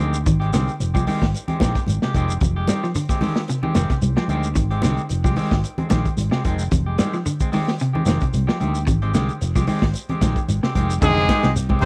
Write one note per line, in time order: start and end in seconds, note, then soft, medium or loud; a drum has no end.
0.00 0.24 D2 medium
0.00 0.16 D#3 medium
0.00 0.12 F3 medium
0.00 0.17 G#3 medium
0.00 0.17 C4 medium
0.00 0.17 G4 medium
0.00 shekere soft
0.14 shekere medium
0.26 0.51 G#1 loud
0.26 0.51 D#3 medium
0.26 kick medium
0.26 closed hi-hat medium
0.26 high conga soft
0.26 low conga medium
0.26 shekere medium
0.40 0.52 G#3 soft
0.40 0.52 C4 soft
0.40 0.53 G4 medium
0.40 closed hi-hat soft
0.53 0.67 C2 medium
0.53 0.78 D3 medium
0.53 0.70 D#3 medium
0.53 0.70 G#3 medium
0.53 0.71 C4 medium
0.53 0.71 G4 medium
0.53 snare medium
0.53 closed hi-hat medium
0.53 high conga medium
0.53 shekere medium
0.68 closed hi-hat soft
0.68 shekere soft
0.80 0.94 F1 medium
0.80 closed hi-hat medium
0.80 high conga soft
0.80 shekere medium
0.94 1.06 C2 medium
0.94 1.06 F3 medium
0.94 1.06 G#3 soft
0.94 1.07 C4 soft
0.94 1.07 G4 medium
0.94 kick medium
0.94 shekere medium
1.07 1.24 D#3 medium
1.07 1.32 D#3 medium
1.07 1.24 G#3 medium
1.07 1.25 C4 medium
1.07 1.25 G4 medium
1.07 open hi-hat medium
1.07 high conga medium
1.07 shekere soft
1.22 1.34 G#1 medium
1.22 kick medium
1.22 snare medium
1.34 closed hi-hat medium
1.34 high conga soft
1.34 shekere medium
1.48 1.60 G#3 soft
1.48 1.60 C4 medium
1.48 1.61 G4 soft
1.48 muted fingered electric bass stroke soft
1.48 closed hi-hat soft
1.48 low conga medium
1.60 1.75 A#1 medium
1.60 1.78 D#3 medium
1.60 1.78 G#3 soft
1.60 1.78 C4 medium
1.60 1.79 G4 medium
1.60 kick medium
1.60 snare medium
1.60 closed hi-hat medium
1.60 high conga loud
1.60 shekere medium
1.75 kick medium
1.75 snare soft
1.75 closed hi-hat soft
1.75 shekere soft
1.87 2.01 G#1 medium
1.87 closed hi-hat medium
1.87 high conga medium
1.87 shekere medium
2.02 2.27 C3 medium
2.02 2.14 G#3 soft
2.02 2.15 G4 medium
2.02 muted fingered electric bass stroke soft
2.02 muted clean electric guitar stroke soft
2.02 snare medium
2.14 2.39 F1 medium
2.14 2.32 D#3 medium
2.14 2.32 G#3 medium
2.14 2.33 C4 medium
2.14 2.33 G4 medium
2.14 kick medium
2.14 closed hi-hat soft
2.14 shekere soft
2.28 closed hi-hat soft
2.28 shekere medium
2.41 2.66 F1 medium
2.41 kick loud
2.41 closed hi-hat medium
2.41 high conga soft
2.41 low conga medium
2.41 shekere medium
2.56 2.67 G#3 soft
2.56 2.68 G4 medium
2.56 muted clean electric guitar stroke medium
2.67 2.85 D#3 medium
2.67 2.82 G3 medium
2.67 2.86 C4 medium
2.67 2.86 G4 medium
2.67 muted clean electric guitar stroke medium
2.67 snare medium
2.67 closed hi-hat medium
2.67 high conga medium
2.67 shekere medium
2.83 2.95 F3 medium
2.83 snare soft
2.83 shekere soft
2.95 3.20 D3 medium
2.95 closed hi-hat medium
2.95 high conga soft
2.95 shekere medium
3.09 3.21 G#3 soft
3.09 3.21 C4 medium
3.09 3.22 G4 medium
3.09 kick medium
3.09 snare soft
3.09 closed hi-hat soft
3.09 shekere medium
3.21 3.46 D#3 medium
3.21 3.39 D#3 medium
3.21 3.39 G#3 medium
3.21 3.39 C4 medium
3.21 3.40 G4 medium
3.21 open hi-hat medium
3.21 high conga medium
3.21 low conga medium
3.21 shekere soft
3.36 snare medium
3.48 3.62 C3 medium
3.48 snare soft
3.48 closed hi-hat medium
3.48 high conga soft
3.48 shekere medium
3.63 3.75 D#3 medium
3.63 3.74 G#3 soft
3.63 3.75 C4 medium
3.63 3.76 G4 medium
3.63 low conga medium
3.74 3.90 F1 medium
3.74 3.93 D#3 medium
3.74 3.89 D#3 medium
3.74 3.93 G#3 medium
3.74 3.93 C4 medium
3.74 3.94 G4 medium
3.74 snare medium
3.74 closed hi-hat soft
3.74 high conga medium
3.74 shekere medium
3.90 4.15 C3 medium
3.90 kick medium
3.90 snare soft
3.90 closed hi-hat soft
3.90 shekere soft
4.02 4.16 C2 medium
4.02 closed hi-hat medium
4.02 high conga medium
4.02 shekere medium
4.16 4.42 F3 medium
4.16 4.28 G#3 soft
4.16 4.29 C4 medium
4.16 4.29 G4 soft
4.16 muted fingered electric bass stroke soft
4.16 snare medium
4.28 4.54 D2 medium
4.28 4.47 D#3 medium
4.28 4.47 G#3 medium
4.28 4.47 C4 medium
4.28 4.47 G4 medium
4.28 closed hi-hat soft
4.28 high conga medium
4.28 shekere soft
4.43 shekere medium
4.55 4.81 G#1 loud
4.55 4.80 D#3 medium
4.55 kick medium
4.55 closed hi-hat medium
4.55 high conga soft
4.55 low conga medium
4.55 shekere medium
4.71 4.83 G#3 soft
4.71 4.83 C4 medium
4.71 4.83 G4 medium
4.71 closed hi-hat soft
4.82 4.97 C2 medium
4.82 5.07 D3 medium
4.82 5.01 D#3 medium
4.82 5.01 G#3 medium
4.82 5.01 C4 medium
4.82 5.01 G4 medium
4.82 snare medium
4.82 closed hi-hat medium
4.82 high conga medium
4.82 shekere medium
4.97 closed hi-hat soft
4.97 shekere soft
5.09 5.24 F1 medium
5.09 closed hi-hat medium
5.09 high conga soft
5.09 shekere medium
5.24 5.36 C2 medium
5.24 5.36 F3 medium
5.24 5.36 G#3 medium
5.24 5.37 C4 medium
5.24 5.37 G4 medium
5.24 kick medium
5.24 snare soft
5.24 shekere medium
5.36 5.61 D#3 medium
5.36 5.54 D#3 medium
5.36 5.55 G#3 medium
5.36 5.55 C4 medium
5.36 5.55 G4 medium
5.36 open hi-hat medium
5.36 high conga medium
5.36 shekere soft
5.51 5.64 G#1 medium
5.51 kick medium
5.51 snare medium
5.64 closed hi-hat medium
5.64 high conga soft
5.64 shekere medium
5.78 5.89 G#3 soft
5.78 5.89 C4 soft
5.78 muted fingered electric bass stroke soft
5.78 closed hi-hat soft
5.78 low conga medium
5.89 6.05 A#1 medium
5.89 6.08 D#3 medium
5.89 6.15 D#3 medium
5.89 6.08 G#3 medium
5.89 6.08 C4 medium
5.89 6.08 G4 medium
5.89 kick medium
5.89 snare medium
5.89 closed hi-hat soft
5.89 high conga medium
5.89 shekere medium
6.05 kick medium
6.05 closed hi-hat soft
6.05 shekere soft
6.17 6.32 G#1 loud
6.17 closed hi-hat medium
6.17 high conga medium
6.17 shekere medium
6.31 6.56 C3 medium
6.31 6.44 G#3 soft
6.31 6.44 C4 soft
6.31 6.45 G4 soft
6.31 muted fingered electric bass stroke soft
6.31 snare medium
6.44 6.70 F1 medium
6.44 6.62 D#3 medium
6.44 6.62 G#3 medium
6.44 6.63 C4 medium
6.44 muted clean electric guitar stroke medium
6.44 kick medium
6.44 closed hi-hat medium
6.44 shekere soft
6.59 closed hi-hat soft
6.59 shekere medium
6.71 6.97 F1 medium
6.71 kick medium
6.71 closed hi-hat medium
6.71 high conga soft
6.71 low conga medium
6.71 shekere medium
6.86 6.98 G#3 soft
6.86 6.99 G4 medium
6.98 7.16 D#3 medium
6.98 7.12 G3 medium
6.98 7.16 G#3 medium
6.98 7.16 C4 medium
6.98 7.17 G4 medium
6.98 snare medium
6.98 closed hi-hat soft
6.98 high conga medium
6.98 shekere medium
7.13 7.25 F3 medium
7.13 snare soft
7.13 shekere soft
7.26 7.50 D3 medium
7.26 closed hi-hat medium
7.26 high conga soft
7.26 shekere medium
7.40 7.51 G#3 soft
7.40 7.52 C4 medium
7.40 kick medium
7.40 closed hi-hat soft
7.40 shekere medium
7.52 7.78 D#3 medium
7.52 7.70 G#3 medium
7.52 7.70 C4 medium
7.52 7.70 G4 medium
7.52 muted clean electric guitar stroke medium
7.52 open hi-hat medium
7.52 high conga medium
7.52 shekere soft
7.68 snare medium
7.79 7.94 C3 medium
7.79 closed hi-hat medium
7.79 high conga soft
7.79 shekere medium
7.93 8.06 D#3 medium
7.93 8.05 G#3 soft
7.93 8.05 C4 medium
7.93 8.06 G4 medium
7.93 low conga medium
8.05 8.20 F1 medium
8.05 8.23 D#3 medium
8.05 8.20 D#3 medium
8.05 8.23 G#3 medium
8.05 8.24 C4 medium
8.05 8.24 G4 medium
8.05 snare medium
8.05 closed hi-hat medium
8.05 high conga medium
8.05 shekere medium
8.20 8.46 C3 medium
8.20 kick medium
8.20 closed hi-hat soft
8.20 shekere soft
8.33 8.48 C2 medium
8.33 closed hi-hat medium
8.33 high conga medium
8.33 shekere medium
8.47 8.72 F3 medium
8.47 8.59 G#3 soft
8.47 8.60 C4 soft
8.47 8.60 G4 medium
8.47 muted fingered electric bass stroke soft
8.47 snare medium
8.60 8.86 D2 medium
8.60 8.77 D#3 medium
8.60 8.78 C4 medium
8.60 8.78 G4 medium
8.60 muted clean electric guitar stroke medium
8.60 closed hi-hat soft
8.60 high conga medium
8.60 shekere soft
8.75 shekere medium
8.87 9.12 G#1 loud
8.87 muted clean electric guitar stroke medium
8.87 kick medium
8.87 closed hi-hat medium
8.87 high conga soft
8.87 low conga medium
8.87 shekere medium
9.02 9.13 G#3 soft
9.02 9.13 C4 medium
9.02 9.14 G4 medium
9.02 closed hi-hat soft
9.14 9.29 C2 medium
9.14 9.38 D3 medium
9.14 9.31 D#3 medium
9.14 9.31 G#3 medium
9.14 9.31 C4 medium
9.14 9.32 G4 medium
9.14 snare medium
9.14 closed hi-hat soft
9.14 high conga medium
9.14 shekere medium
9.29 closed hi-hat soft
9.29 shekere soft
9.41 9.55 F1 medium
9.41 snare soft
9.41 closed hi-hat medium
9.41 high conga soft
9.41 shekere medium
9.56 9.67 C2 medium
9.56 9.67 F3 medium
9.56 9.67 G#3 soft
9.56 9.67 C4 medium
9.56 9.67 G4 medium
9.56 kick medium
9.56 snare soft
9.56 shekere medium
9.67 9.92 D#3 medium
9.67 9.85 G#3 medium
9.67 9.85 C4 medium
9.67 9.85 G4 medium
9.67 open hi-hat medium
9.67 high conga medium
9.67 shekere soft
9.82 9.94 G#1 medium
9.82 kick medium
9.82 snare medium
9.94 closed hi-hat medium
9.94 shekere medium
10.09 10.21 G#3 soft
10.09 10.22 C4 soft
10.09 10.22 G4 medium
10.09 muted fingered electric bass stroke soft
10.09 closed hi-hat soft
10.09 low conga medium
10.21 10.35 A#1 medium
10.21 10.46 D#3 medium
10.21 10.39 D#3 medium
10.21 10.39 G#3 medium
10.21 10.40 C4 medium
10.21 10.40 G4 medium
10.21 kick medium
10.21 snare medium
10.21 closed hi-hat medium
10.21 high conga medium
10.21 shekere medium
10.36 kick medium
10.36 closed hi-hat soft
10.36 shekere soft
10.48 10.62 G#1 medium
10.48 closed hi-hat medium
10.48 high conga medium
10.48 shekere medium
10.63 10.87 C3 medium
10.63 10.74 G#3 soft
10.63 10.74 C4 soft
10.63 10.75 G4 medium
10.63 muted fingered electric bass stroke soft
10.63 snare medium
10.75 11.00 F1 medium
10.75 10.92 D#3 medium
10.75 10.92 G#3 medium
10.75 10.92 C4 medium
10.75 10.93 G4 medium
10.75 kick medium
10.75 closed hi-hat medium
10.75 high conga medium
10.75 shekere soft
10.90 closed hi-hat soft
10.90 shekere medium
11.00 11.27 F1 loud
11.00 11.51 G#2 loud
11.00 11.26 D3 medium
11.00 11.17 D#3 medium
11.00 11.52 G#3 loud
11.00 11.17 G#3 medium
11.00 11.16 C4 medium
11.00 11.16 G4 medium
11.00 11.52 G#4 loud
11.00 kick loud
11.00 crash loud
11.00 high conga soft
11.00 low conga medium
11.00 shekere medium
11.17 11.28 G#3 soft
11.17 11.29 C4 medium
11.17 11.29 G4 medium
11.29 11.46 D#3 medium
11.29 11.46 G#3 medium
11.29 11.46 G4 medium
11.29 kick medium
11.29 snare medium
11.29 closed hi-hat medium
11.29 high conga loud
11.29 shekere soft
11.43 11.80 C2 medium
11.43 11.67 C3 medium
11.43 snare medium
11.43 closed hi-hat soft
11.55 snare soft
11.55 closed hi-hat medium
11.55 high conga soft
11.55 shekere loud
11.69 11.81 G#3 soft
11.69 11.82 C4 medium
11.69 11.82 G4 medium
11.69 kick medium
11.69 high conga medium
11.81 11.85 C3 loud
11.81 11.85 D#3 medium
11.81 low conga medium